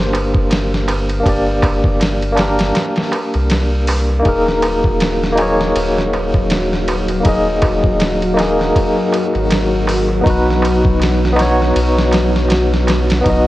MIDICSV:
0, 0, Header, 1, 6, 480
1, 0, Start_track
1, 0, Tempo, 750000
1, 801, Time_signature, 4, 2, 24, 8
1, 8621, End_track
2, 0, Start_track
2, 0, Title_t, "Tine electric piano"
2, 0, Program_c, 0, 4
2, 0, Control_c, 0, 64, 127
2, 0, Note_on_c, 0, 58, 82
2, 0, Note_on_c, 0, 62, 71
2, 0, Note_on_c, 0, 67, 70
2, 0, Note_on_c, 0, 70, 89
2, 0, Note_on_c, 0, 72, 85
2, 758, Note_off_c, 0, 58, 0
2, 766, Note_on_c, 0, 58, 68
2, 771, Note_off_c, 0, 62, 0
2, 780, Note_off_c, 0, 67, 0
2, 787, Note_on_c, 0, 62, 62
2, 790, Note_off_c, 0, 72, 0
2, 805, Note_on_c, 0, 67, 62
2, 826, Note_on_c, 0, 74, 76
2, 1478, Note_off_c, 0, 58, 0
2, 1488, Note_on_c, 0, 58, 77
2, 1489, Note_off_c, 0, 62, 0
2, 1498, Note_off_c, 0, 67, 0
2, 1507, Note_on_c, 0, 62, 78
2, 1508, Note_off_c, 0, 74, 0
2, 1527, Note_on_c, 0, 67, 72
2, 1545, Note_off_c, 0, 70, 0
2, 1545, Note_on_c, 0, 70, 94
2, 2677, Note_off_c, 0, 58, 0
2, 2684, Note_on_c, 0, 58, 77
2, 2689, Note_off_c, 0, 62, 0
2, 2699, Note_off_c, 0, 67, 0
2, 2703, Note_on_c, 0, 63, 72
2, 2708, Note_off_c, 0, 70, 0
2, 2721, Note_on_c, 0, 68, 69
2, 2728, Control_c, 0, 64, 0
2, 2741, Note_on_c, 0, 70, 88
2, 2857, Control_c, 0, 64, 127
2, 3397, Note_off_c, 0, 58, 0
2, 3405, Note_on_c, 0, 58, 81
2, 3407, Note_off_c, 0, 63, 0
2, 3416, Note_off_c, 0, 68, 0
2, 3425, Note_on_c, 0, 63, 76
2, 3426, Note_off_c, 0, 70, 0
2, 3444, Note_on_c, 0, 68, 71
2, 3466, Note_on_c, 0, 73, 94
2, 4598, Note_off_c, 0, 58, 0
2, 4608, Note_off_c, 0, 63, 0
2, 4609, Note_on_c, 0, 58, 67
2, 4617, Note_off_c, 0, 68, 0
2, 4628, Note_off_c, 0, 73, 0
2, 4628, Note_on_c, 0, 63, 65
2, 4648, Note_on_c, 0, 68, 67
2, 4664, Note_on_c, 0, 75, 80
2, 5320, Note_off_c, 0, 58, 0
2, 5329, Note_off_c, 0, 63, 0
2, 5335, Note_on_c, 0, 58, 76
2, 5339, Note_off_c, 0, 68, 0
2, 5347, Note_off_c, 0, 75, 0
2, 5353, Note_on_c, 0, 63, 75
2, 5375, Note_on_c, 0, 68, 74
2, 5391, Note_on_c, 0, 70, 86
2, 6523, Note_off_c, 0, 58, 0
2, 6532, Note_off_c, 0, 63, 0
2, 6535, Note_on_c, 0, 59, 82
2, 6543, Note_off_c, 0, 68, 0
2, 6551, Note_off_c, 0, 70, 0
2, 6551, Note_on_c, 0, 63, 77
2, 6570, Control_c, 0, 64, 0
2, 6570, Note_on_c, 0, 66, 76
2, 6591, Note_on_c, 0, 71, 89
2, 6692, Control_c, 0, 64, 127
2, 7243, Note_off_c, 0, 59, 0
2, 7249, Note_on_c, 0, 59, 82
2, 7251, Note_off_c, 0, 63, 0
2, 7260, Note_off_c, 0, 66, 0
2, 7270, Note_on_c, 0, 63, 75
2, 7271, Note_off_c, 0, 71, 0
2, 7288, Note_on_c, 0, 66, 80
2, 7308, Note_on_c, 0, 73, 91
2, 8440, Note_off_c, 0, 59, 0
2, 8450, Note_off_c, 0, 63, 0
2, 8455, Note_on_c, 0, 59, 74
2, 8459, Note_off_c, 0, 66, 0
2, 8469, Note_off_c, 0, 73, 0
2, 8472, Note_on_c, 0, 63, 62
2, 8494, Note_on_c, 0, 66, 63
2, 8511, Note_on_c, 0, 75, 76
2, 8621, Note_off_c, 0, 59, 0
2, 8621, Note_off_c, 0, 63, 0
2, 8621, Note_off_c, 0, 66, 0
2, 8621, Note_off_c, 0, 75, 0
2, 8621, End_track
3, 0, Start_track
3, 0, Title_t, "String machine"
3, 0, Program_c, 1, 50
3, 2717, Note_on_c, 1, 66, 84
3, 2720, Note_on_c, 1, 54, 84
3, 8621, Note_off_c, 1, 54, 0
3, 8621, Note_off_c, 1, 66, 0
3, 8621, End_track
4, 0, Start_track
4, 0, Title_t, "Sub bass"
4, 0, Program_c, 2, 38
4, 0, Note_on_c, 2, 31, 94
4, 785, Note_off_c, 2, 31, 0
4, 809, Note_on_c, 2, 31, 90
4, 1745, Note_off_c, 2, 31, 0
4, 2144, Note_on_c, 2, 36, 74
4, 2704, Note_off_c, 2, 36, 0
4, 2724, Note_on_c, 2, 27, 98
4, 3662, Note_off_c, 2, 27, 0
4, 3682, Note_on_c, 2, 27, 90
4, 4621, Note_off_c, 2, 27, 0
4, 4642, Note_on_c, 2, 27, 90
4, 5581, Note_off_c, 2, 27, 0
4, 5984, Note_on_c, 2, 32, 74
4, 6544, Note_off_c, 2, 32, 0
4, 6570, Note_on_c, 2, 35, 91
4, 7505, Note_off_c, 2, 35, 0
4, 7526, Note_on_c, 2, 35, 94
4, 8463, Note_off_c, 2, 35, 0
4, 8490, Note_on_c, 2, 35, 98
4, 8621, Note_off_c, 2, 35, 0
4, 8621, End_track
5, 0, Start_track
5, 0, Title_t, "Darbuka"
5, 85, Note_on_c, 9, 63, 82
5, 149, Note_off_c, 9, 63, 0
5, 216, Note_on_c, 9, 63, 41
5, 280, Note_off_c, 9, 63, 0
5, 322, Note_on_c, 9, 63, 43
5, 386, Note_off_c, 9, 63, 0
5, 562, Note_on_c, 9, 63, 86
5, 626, Note_off_c, 9, 63, 0
5, 697, Note_on_c, 9, 63, 35
5, 761, Note_off_c, 9, 63, 0
5, 803, Note_on_c, 9, 63, 46
5, 867, Note_off_c, 9, 63, 0
5, 937, Note_on_c, 9, 63, 34
5, 1001, Note_off_c, 9, 63, 0
5, 1040, Note_on_c, 9, 63, 98
5, 1104, Note_off_c, 9, 63, 0
5, 1176, Note_on_c, 9, 63, 38
5, 1240, Note_off_c, 9, 63, 0
5, 1282, Note_on_c, 9, 63, 49
5, 1346, Note_off_c, 9, 63, 0
5, 1516, Note_on_c, 9, 63, 82
5, 1580, Note_off_c, 9, 63, 0
5, 1658, Note_on_c, 9, 63, 40
5, 1722, Note_off_c, 9, 63, 0
5, 1761, Note_on_c, 9, 63, 53
5, 1825, Note_off_c, 9, 63, 0
5, 1899, Note_on_c, 9, 63, 32
5, 1963, Note_off_c, 9, 63, 0
5, 1996, Note_on_c, 9, 63, 92
5, 2060, Note_off_c, 9, 63, 0
5, 2137, Note_on_c, 9, 63, 40
5, 2201, Note_off_c, 9, 63, 0
5, 2252, Note_on_c, 9, 63, 50
5, 2316, Note_off_c, 9, 63, 0
5, 2485, Note_on_c, 9, 63, 89
5, 2549, Note_off_c, 9, 63, 0
5, 2616, Note_on_c, 9, 63, 36
5, 2680, Note_off_c, 9, 63, 0
5, 2725, Note_on_c, 9, 63, 49
5, 2789, Note_off_c, 9, 63, 0
5, 2856, Note_on_c, 9, 63, 34
5, 2920, Note_off_c, 9, 63, 0
5, 2958, Note_on_c, 9, 63, 87
5, 3022, Note_off_c, 9, 63, 0
5, 3102, Note_on_c, 9, 63, 35
5, 3166, Note_off_c, 9, 63, 0
5, 3205, Note_on_c, 9, 63, 49
5, 3269, Note_off_c, 9, 63, 0
5, 3444, Note_on_c, 9, 63, 82
5, 3508, Note_off_c, 9, 63, 0
5, 3580, Note_on_c, 9, 63, 38
5, 3644, Note_off_c, 9, 63, 0
5, 3687, Note_on_c, 9, 63, 50
5, 3751, Note_off_c, 9, 63, 0
5, 3818, Note_on_c, 9, 63, 33
5, 3882, Note_off_c, 9, 63, 0
5, 3925, Note_on_c, 9, 63, 79
5, 3989, Note_off_c, 9, 63, 0
5, 4058, Note_on_c, 9, 63, 39
5, 4122, Note_off_c, 9, 63, 0
5, 4167, Note_on_c, 9, 63, 44
5, 4231, Note_off_c, 9, 63, 0
5, 4405, Note_on_c, 9, 63, 81
5, 4469, Note_off_c, 9, 63, 0
5, 4541, Note_on_c, 9, 63, 37
5, 4605, Note_off_c, 9, 63, 0
5, 4645, Note_on_c, 9, 63, 53
5, 4709, Note_off_c, 9, 63, 0
5, 4778, Note_on_c, 9, 63, 30
5, 4842, Note_off_c, 9, 63, 0
5, 4878, Note_on_c, 9, 63, 89
5, 4942, Note_off_c, 9, 63, 0
5, 5009, Note_on_c, 9, 63, 35
5, 5073, Note_off_c, 9, 63, 0
5, 5118, Note_on_c, 9, 63, 45
5, 5182, Note_off_c, 9, 63, 0
5, 5358, Note_on_c, 9, 63, 77
5, 5422, Note_off_c, 9, 63, 0
5, 5497, Note_on_c, 9, 63, 35
5, 5561, Note_off_c, 9, 63, 0
5, 5602, Note_on_c, 9, 63, 43
5, 5666, Note_off_c, 9, 63, 0
5, 5734, Note_on_c, 9, 63, 31
5, 5798, Note_off_c, 9, 63, 0
5, 5839, Note_on_c, 9, 63, 73
5, 5903, Note_off_c, 9, 63, 0
5, 5974, Note_on_c, 9, 63, 38
5, 6038, Note_off_c, 9, 63, 0
5, 6081, Note_on_c, 9, 63, 50
5, 6145, Note_off_c, 9, 63, 0
5, 6319, Note_on_c, 9, 63, 89
5, 6383, Note_off_c, 9, 63, 0
5, 6455, Note_on_c, 9, 63, 37
5, 6519, Note_off_c, 9, 63, 0
5, 6556, Note_on_c, 9, 63, 42
5, 6620, Note_off_c, 9, 63, 0
5, 6692, Note_on_c, 9, 63, 35
5, 6756, Note_off_c, 9, 63, 0
5, 6798, Note_on_c, 9, 63, 88
5, 6862, Note_off_c, 9, 63, 0
5, 6928, Note_on_c, 9, 63, 35
5, 6992, Note_off_c, 9, 63, 0
5, 7038, Note_on_c, 9, 63, 46
5, 7102, Note_off_c, 9, 63, 0
5, 7273, Note_on_c, 9, 63, 95
5, 7337, Note_off_c, 9, 63, 0
5, 7413, Note_on_c, 9, 63, 34
5, 7477, Note_off_c, 9, 63, 0
5, 7513, Note_on_c, 9, 63, 44
5, 7577, Note_off_c, 9, 63, 0
5, 7650, Note_on_c, 9, 63, 32
5, 7714, Note_off_c, 9, 63, 0
5, 7755, Note_on_c, 9, 63, 73
5, 7819, Note_off_c, 9, 63, 0
5, 7885, Note_on_c, 9, 63, 36
5, 7949, Note_off_c, 9, 63, 0
5, 7990, Note_on_c, 9, 63, 49
5, 8054, Note_off_c, 9, 63, 0
5, 8239, Note_on_c, 9, 63, 85
5, 8303, Note_off_c, 9, 63, 0
5, 8367, Note_on_c, 9, 63, 34
5, 8431, Note_off_c, 9, 63, 0
5, 8477, Note_on_c, 9, 63, 53
5, 8541, Note_off_c, 9, 63, 0
5, 8621, End_track
6, 0, Start_track
6, 0, Title_t, "Drums"
6, 0, Note_on_c, 9, 38, 58
6, 63, Note_off_c, 9, 38, 0
6, 94, Note_on_c, 9, 51, 58
6, 158, Note_off_c, 9, 51, 0
6, 221, Note_on_c, 9, 36, 88
6, 285, Note_off_c, 9, 36, 0
6, 326, Note_on_c, 9, 51, 78
6, 337, Note_on_c, 9, 38, 106
6, 390, Note_off_c, 9, 51, 0
6, 401, Note_off_c, 9, 38, 0
6, 475, Note_on_c, 9, 38, 51
6, 539, Note_off_c, 9, 38, 0
6, 566, Note_on_c, 9, 51, 68
6, 630, Note_off_c, 9, 51, 0
6, 700, Note_on_c, 9, 51, 41
6, 764, Note_off_c, 9, 51, 0
6, 805, Note_on_c, 9, 36, 98
6, 807, Note_on_c, 9, 51, 79
6, 869, Note_off_c, 9, 36, 0
6, 871, Note_off_c, 9, 51, 0
6, 1044, Note_on_c, 9, 36, 85
6, 1047, Note_on_c, 9, 51, 67
6, 1108, Note_off_c, 9, 36, 0
6, 1111, Note_off_c, 9, 51, 0
6, 1179, Note_on_c, 9, 36, 90
6, 1243, Note_off_c, 9, 36, 0
6, 1288, Note_on_c, 9, 51, 79
6, 1299, Note_on_c, 9, 38, 104
6, 1352, Note_off_c, 9, 51, 0
6, 1363, Note_off_c, 9, 38, 0
6, 1426, Note_on_c, 9, 51, 41
6, 1490, Note_off_c, 9, 51, 0
6, 1521, Note_on_c, 9, 51, 72
6, 1532, Note_on_c, 9, 38, 99
6, 1585, Note_off_c, 9, 51, 0
6, 1596, Note_off_c, 9, 38, 0
6, 1659, Note_on_c, 9, 51, 79
6, 1670, Note_on_c, 9, 38, 95
6, 1723, Note_off_c, 9, 51, 0
6, 1734, Note_off_c, 9, 38, 0
6, 1762, Note_on_c, 9, 51, 77
6, 1773, Note_on_c, 9, 38, 100
6, 1826, Note_off_c, 9, 51, 0
6, 1837, Note_off_c, 9, 38, 0
6, 1895, Note_on_c, 9, 51, 76
6, 1906, Note_on_c, 9, 38, 106
6, 1959, Note_off_c, 9, 51, 0
6, 1970, Note_off_c, 9, 38, 0
6, 2002, Note_on_c, 9, 51, 62
6, 2066, Note_off_c, 9, 51, 0
6, 2136, Note_on_c, 9, 51, 38
6, 2200, Note_off_c, 9, 51, 0
6, 2238, Note_on_c, 9, 51, 88
6, 2249, Note_on_c, 9, 38, 106
6, 2302, Note_off_c, 9, 51, 0
6, 2313, Note_off_c, 9, 38, 0
6, 2478, Note_on_c, 9, 46, 73
6, 2542, Note_off_c, 9, 46, 0
6, 2719, Note_on_c, 9, 51, 80
6, 2722, Note_on_c, 9, 36, 93
6, 2783, Note_off_c, 9, 51, 0
6, 2786, Note_off_c, 9, 36, 0
6, 2868, Note_on_c, 9, 38, 46
6, 2932, Note_off_c, 9, 38, 0
6, 2958, Note_on_c, 9, 51, 64
6, 3022, Note_off_c, 9, 51, 0
6, 3097, Note_on_c, 9, 36, 88
6, 3161, Note_off_c, 9, 36, 0
6, 3201, Note_on_c, 9, 51, 80
6, 3212, Note_on_c, 9, 38, 100
6, 3265, Note_off_c, 9, 51, 0
6, 3276, Note_off_c, 9, 38, 0
6, 3349, Note_on_c, 9, 38, 53
6, 3413, Note_off_c, 9, 38, 0
6, 3438, Note_on_c, 9, 51, 63
6, 3502, Note_off_c, 9, 51, 0
6, 3587, Note_on_c, 9, 38, 43
6, 3651, Note_off_c, 9, 38, 0
6, 3682, Note_on_c, 9, 51, 87
6, 3746, Note_off_c, 9, 51, 0
6, 3828, Note_on_c, 9, 38, 53
6, 3892, Note_off_c, 9, 38, 0
6, 3924, Note_on_c, 9, 51, 64
6, 3988, Note_off_c, 9, 51, 0
6, 4058, Note_on_c, 9, 36, 86
6, 4122, Note_off_c, 9, 36, 0
6, 4160, Note_on_c, 9, 51, 83
6, 4170, Note_on_c, 9, 38, 112
6, 4224, Note_off_c, 9, 51, 0
6, 4234, Note_off_c, 9, 38, 0
6, 4307, Note_on_c, 9, 38, 49
6, 4371, Note_off_c, 9, 38, 0
6, 4401, Note_on_c, 9, 51, 64
6, 4465, Note_off_c, 9, 51, 0
6, 4533, Note_on_c, 9, 51, 42
6, 4597, Note_off_c, 9, 51, 0
6, 4639, Note_on_c, 9, 51, 82
6, 4642, Note_on_c, 9, 36, 100
6, 4703, Note_off_c, 9, 51, 0
6, 4706, Note_off_c, 9, 36, 0
6, 4877, Note_on_c, 9, 51, 67
6, 4882, Note_on_c, 9, 36, 84
6, 4941, Note_off_c, 9, 51, 0
6, 4946, Note_off_c, 9, 36, 0
6, 5018, Note_on_c, 9, 36, 88
6, 5082, Note_off_c, 9, 36, 0
6, 5121, Note_on_c, 9, 51, 78
6, 5131, Note_on_c, 9, 38, 96
6, 5185, Note_off_c, 9, 51, 0
6, 5195, Note_off_c, 9, 38, 0
6, 5262, Note_on_c, 9, 51, 41
6, 5326, Note_off_c, 9, 51, 0
6, 5367, Note_on_c, 9, 51, 66
6, 5378, Note_on_c, 9, 38, 39
6, 5431, Note_off_c, 9, 51, 0
6, 5442, Note_off_c, 9, 38, 0
6, 5510, Note_on_c, 9, 38, 47
6, 5574, Note_off_c, 9, 38, 0
6, 5605, Note_on_c, 9, 36, 104
6, 5606, Note_on_c, 9, 51, 82
6, 5669, Note_off_c, 9, 36, 0
6, 5670, Note_off_c, 9, 51, 0
6, 5847, Note_on_c, 9, 51, 63
6, 5911, Note_off_c, 9, 51, 0
6, 5984, Note_on_c, 9, 51, 38
6, 6048, Note_off_c, 9, 51, 0
6, 6084, Note_on_c, 9, 51, 86
6, 6094, Note_on_c, 9, 38, 117
6, 6148, Note_off_c, 9, 51, 0
6, 6158, Note_off_c, 9, 38, 0
6, 6329, Note_on_c, 9, 46, 76
6, 6393, Note_off_c, 9, 46, 0
6, 6567, Note_on_c, 9, 36, 101
6, 6572, Note_on_c, 9, 51, 79
6, 6631, Note_off_c, 9, 36, 0
6, 6636, Note_off_c, 9, 51, 0
6, 6722, Note_on_c, 9, 38, 43
6, 6786, Note_off_c, 9, 38, 0
6, 6814, Note_on_c, 9, 51, 65
6, 6878, Note_off_c, 9, 51, 0
6, 6943, Note_on_c, 9, 36, 97
6, 7007, Note_off_c, 9, 36, 0
6, 7051, Note_on_c, 9, 51, 77
6, 7062, Note_on_c, 9, 38, 100
6, 7115, Note_off_c, 9, 51, 0
6, 7126, Note_off_c, 9, 38, 0
6, 7201, Note_on_c, 9, 38, 54
6, 7265, Note_off_c, 9, 38, 0
6, 7291, Note_on_c, 9, 51, 68
6, 7302, Note_on_c, 9, 38, 38
6, 7355, Note_off_c, 9, 51, 0
6, 7366, Note_off_c, 9, 38, 0
6, 7438, Note_on_c, 9, 38, 43
6, 7502, Note_off_c, 9, 38, 0
6, 7527, Note_on_c, 9, 51, 89
6, 7591, Note_off_c, 9, 51, 0
6, 7672, Note_on_c, 9, 38, 59
6, 7736, Note_off_c, 9, 38, 0
6, 7761, Note_on_c, 9, 51, 73
6, 7772, Note_on_c, 9, 38, 91
6, 7825, Note_off_c, 9, 51, 0
6, 7836, Note_off_c, 9, 38, 0
6, 7911, Note_on_c, 9, 38, 46
6, 7975, Note_off_c, 9, 38, 0
6, 8001, Note_on_c, 9, 51, 77
6, 8012, Note_on_c, 9, 38, 108
6, 8065, Note_off_c, 9, 51, 0
6, 8076, Note_off_c, 9, 38, 0
6, 8152, Note_on_c, 9, 38, 44
6, 8216, Note_off_c, 9, 38, 0
6, 8244, Note_on_c, 9, 51, 77
6, 8255, Note_on_c, 9, 38, 98
6, 8308, Note_off_c, 9, 51, 0
6, 8319, Note_off_c, 9, 38, 0
6, 8385, Note_on_c, 9, 51, 74
6, 8395, Note_on_c, 9, 38, 105
6, 8449, Note_off_c, 9, 51, 0
6, 8459, Note_off_c, 9, 38, 0
6, 8485, Note_on_c, 9, 36, 104
6, 8485, Note_on_c, 9, 51, 76
6, 8549, Note_off_c, 9, 36, 0
6, 8549, Note_off_c, 9, 51, 0
6, 8621, End_track
0, 0, End_of_file